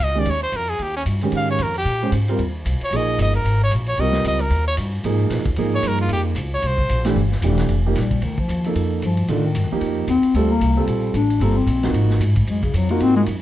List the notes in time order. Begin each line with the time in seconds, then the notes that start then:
0.00 C#2 D#5
0.15 D#3 G#3 C#4 G4
0.20 D5
0.25 D#2, ride
0.30 C#5
0.43 C5
0.52 F2, hi-hat pedal, ride
0.57 A#4
0.67 G#4, ride
0.79 D#2 G4, ride
0.97 C#4
1.06 G2, hi-hat pedal, ride
1.21 D#3 G#3 C#4 G4, ride
1.32 G#2, ride
1.37 F5
1.51 C#5
1.59 F2, hi-hat pedal, ride
1.63 A#4
1.74 G4, ride
1.85 A#2, ride
2.03 G#3 C#4 G4 C5
2.12 G#2, hi-hat pedal, ride
2.28 G3 C4 F4 A#4, ride
2.38 D#2, ride
2.65 C2, hi-hat pedal, ride
2.81 C#5, ride
2.91 A#1 F3 A#3 D#4 G#4, ride
2.96 D#5
3.18 G1, hi-hat pedal, ride
3.22 D#5
3.34 A#4, ride
3.44 G#1, ride
3.63 C#5
3.71 A#1, hi-hat pedal, ride
3.86 C#5, ride
3.97 C2 G3 C4 F4 A#4 D#5, ride
4.13 snare
4.24 C#2 D#5, hi-hat pedal, ride
4.39 A#4, ride
4.50 D#2, ride
4.68 C#5
4.77 G2, hi-hat pedal, ride
5.03 G#2 F3 A#3 D#4 G#4, ride
5.30 A#2, snare, hi-hat pedal, ride
5.39 G#2
5.45 D#2, kick, ride
5.56 G#2 F3 A#3 D#4 G#4, ride
5.75 C#5
5.83 G2, hi-hat pedal, ride
5.88 A#4
5.98 F4, ride
6.09 F2, ride
6.13 G4
6.35 C#2, hi-hat pedal, ride
6.54 C#5
6.62 C2, ride
6.67 C5
6.78 kick
6.89 A#1, hi-hat pedal, ride
7.04 E3 A3 D4 G4, snare, ride
7.16 G1
7.32 snare
7.42 E1 E3 A3 D4 G4, hi-hat pedal, ride
7.58 snare, ride
7.69 F1, ride
7.86 F3 A#3 D#4 G4
7.95 A#1 G3, snare, hi-hat pedal, ride
8.11 kick, ride
8.21 D2 D#3, ride
8.38 F3, kick
8.48 D#2, hi-hat pedal, ride
8.64 F3 A#3 D#4 A4, ride
8.75 F2, ride
9.02 G2 F3, hi-hat pedal, ride
9.17 ride
9.28 A2 D3 D#3 A3 D4 F4, ride
9.45 D#3
9.55 G2, hi-hat pedal, ride
9.63 F2
9.72 D#2 F3 A#3 D#4 G4
9.81 F2, ride
10.07 D#2 C4, hi-hat pedal, ride
10.23 muted upright bass stroke, ride
10.34 D2 G3 A3 C4 F4 A4, ride
10.50 A#3
10.61 C2, hi-hat pedal, ride
10.76 G3 C4 F4 A4
10.87 A#1, ride
11.14 A1 D4, hi-hat pedal, ride
11.30 ride
11.40 G1 G3 A#3 C4 F4 A4, ride
11.57 C4
11.67 A#1, hi-hat pedal, ride
11.83 F3 A#3 D#4 F#4, snare, ride
11.93 G#1, ride
12.10 snare
12.20 G#2, hi-hat pedal, ride
12.36 kick, ride
12.47 F#2 G#3, ride
12.63 C#3, kick, ride
12.74 F2 F#3, hi-hat pedal, ride
12.89 A#3 D#4 F4 F#4, ride
13.00 G#2 C4, ride
13.16 G#3
13.26 F#2, hi-hat pedal, ride